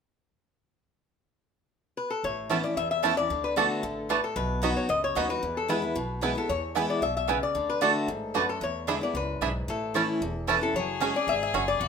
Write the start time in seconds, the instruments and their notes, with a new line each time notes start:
1.97 resonator guitar played with a steel bar B4
2.10 resonator guitar played with a steel bar A4
2.23 upright bass A1, steel-string acoustic guitar A2, resonator guitar played with a steel bar C#5
2.50 steel-string acoustic guitar E3 B3 C#4 E4, five-string banjo A3 C#4 E4, mandolin B3 E4 C#5 A5
2.63 steel-string acoustic guitar C#4 E4, resonator guitar played with a steel bar D5
2.76 upright bass E2, steel-string acoustic guitar E2, resonator guitar played with a steel bar E5
2.91 resonator guitar played with a steel bar E5
3.03 steel-string acoustic guitar E3 B3 C#4 E4, five-string banjo A3 C#4 E4, mandolin B3 E4 C#5 A5
3.17 steel-string acoustic guitar C#4 E4, resonator guitar played with a steel bar D5
3.30 upright bass D2, steel-string acoustic guitar D3
3.44 resonator guitar played with a steel bar B4
3.56 steel-string acoustic guitar D3 A3 B3 F#4, five-string banjo A3 D4 F#4, mandolin B3 F#4 D5 A5, resonator guitar played with a steel bar A4
3.83 upright bass A1, steel-string acoustic guitar D3
4.09 steel-string acoustic guitar A2, five-string banjo A3 D4 F#4, mandolin B3 F#4 D5 A5, resonator guitar played with a steel bar B4
4.24 resonator guitar played with a steel bar A4
4.36 upright bass B1, steel-string acoustic guitar B2, resonator guitar played with a steel bar B4
4.62 steel-string acoustic guitar F#3 B3 D#4 F#4, mandolin B3 F#4 D#5 B5, five-string banjo B3 D#4 F#4
4.77 resonator guitar played with a steel bar C#5
4.89 upright bass C#2, steel-string acoustic guitar F#2, resonator guitar played with a steel bar D#5
5.04 resonator guitar played with a steel bar C#5
5.15 upright bass D#2, steel-string acoustic guitar F#3 B3 D#4 F#4, mandolin B3 F#4 D#5 B5, five-string banjo B3 D#4 F#4
5.29 steel-string acoustic guitar D#4 F#4, resonator guitar played with a steel bar B4
5.43 steel-string acoustic guitar E2, upright bass E2
5.57 resonator guitar played with a steel bar A4
5.68 steel-string acoustic guitar E3 G#3 B3 E4, mandolin B3 E4 B4 G#5, five-string banjo B3 E4, resonator guitar played with a steel bar B4
5.82 steel-string acoustic guitar B3 E4
5.96 upright bass B1, steel-string acoustic guitar B2
6.21 steel-string acoustic guitar E3 G#3 B3 E4, mandolin B3 E4 B4 G#5, five-string banjo B3 E4, resonator guitar played with a steel bar B4
6.35 steel-string acoustic guitar B3 E4, resonator guitar played with a steel bar A4
6.49 upright bass E2, steel-string acoustic guitar E2, resonator guitar played with a steel bar C#5
6.75 steel-string acoustic guitar E3 G#3 B3 E4, mandolin B3 E4 B4 G#5, five-string banjo B3 E4
6.90 resonator guitar played with a steel bar D5
7.01 upright bass B1, steel-string acoustic guitar B2, resonator guitar played with a steel bar E5
7.17 resonator guitar played with a steel bar E5
7.28 steel-string acoustic guitar C#3, mandolin B3 E4 B4 G#5, five-string banjo B3 E4
7.43 resonator guitar played with a steel bar D5
7.55 upright bass D2, steel-string acoustic guitar D3
7.69 resonator guitar played with a steel bar B4
7.81 steel-string acoustic guitar D3 A3 D4 F#4, mandolin A3 F#4 D5 A5, five-string banjo A3 D4 F#4, resonator guitar played with a steel bar A4
8.07 upright bass A1, steel-string acoustic guitar G#2
8.34 steel-string acoustic guitar F#2, mandolin A3 F#4 D5 A5, five-string banjo A3 D4 F#4, resonator guitar played with a steel bar B4
8.49 resonator guitar played with a steel bar A4
8.61 upright bass E2, steel-string acoustic guitar E2, resonator guitar played with a steel bar C#5
8.87 steel-string acoustic guitar D3 G#3 B3 E4, five-string banjo B3 D4 E4, mandolin D4 G#4 E5 B5
9.01 steel-string acoustic guitar B3 E4, resonator guitar played with a steel bar D5
9.14 upright bass C#2, steel-string acoustic guitar F#2, resonator guitar played with a steel bar B4
9.41 upright bass B1, steel-string acoustic guitar G#2, five-string banjo B3 D4 E4, mandolin D4 G#4 E5 B5
9.68 upright bass A1, steel-string acoustic guitar A2, resonator guitar played with a steel bar A4
9.94 steel-string acoustic guitar E3 A3 C#4 E4, mandolin A3 E4 C#5 A5, five-string banjo A3 C#4 E4
10.21 upright bass E1, steel-string acoustic guitar E2
10.47 steel-string acoustic guitar E3 A3 C#4 E4, mandolin A3 E4 C#5 A5, five-string banjo A3 C#4 E4, resonator guitar played with a steel bar B4
10.61 steel-string acoustic guitar C#4 E4, resonator guitar played with a steel bar A4
10.74 upright bass F#1, steel-string acoustic guitar F#3, fiddle G#4, resonator guitar played with a steel bar C#5
11.00 steel-string acoustic guitar F#3 G#3 C#4 G#4, mandolin C#4 F#4 C#5 G#5, five-string banjo C#4 F#4
11.14 steel-string acoustic guitar C#4 G#4, resonator guitar played with a steel bar D5
11.27 upright bass G#1, steel-string acoustic guitar G#2, resonator guitar played with a steel bar E5
11.43 resonator guitar played with a steel bar E5
11.54 upright bass F#1, steel-string acoustic guitar F#2, mandolin C#4 F#4 C#5 G#5, five-string banjo C#4 F#4
11.68 resonator guitar played with a steel bar D5
11.80 upright bass E1, steel-string acoustic guitar E2, fiddle F#4